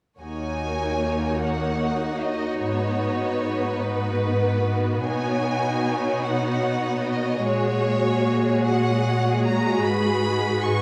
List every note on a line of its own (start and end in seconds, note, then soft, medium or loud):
0.21 2.59 D#2 soft
0.21 2.58 A#3 soft
0.21 5.01 D#4 soft
0.21 5.01 F#4 soft
0.21 2.58 C#5 soft
0.21 1.39 G#5 medium
1.43 2.23 F#5 soft
2.22 2.62 D#5 medium
2.62 5.01 G#2 soft
2.62 7.39 B3 soft
2.62 5.05 B4 soft
2.62 3.79 C#5 medium
3.81 5.04 B4 medium
5.03 7.44 B2 soft
5.03 7.39 D#4 soft
5.03 7.40 F#4 soft
5.03 9.81 C#5 soft
5.03 6.22 G#5 medium
6.24 7.03 F#5 medium
7.04 7.43 D#5 medium
7.42 9.81 A#2 soft
7.42 10.82 G#3 soft
7.42 10.82 F#4 soft
7.42 10.82 G#4 soft
7.42 8.66 C#5 medium
8.66 9.44 F#5 medium
9.46 9.84 A#5 medium
9.84 10.82 G#2 medium
9.84 10.82 B4 soft
9.84 10.62 B5 medium
10.62 10.82 C#6 medium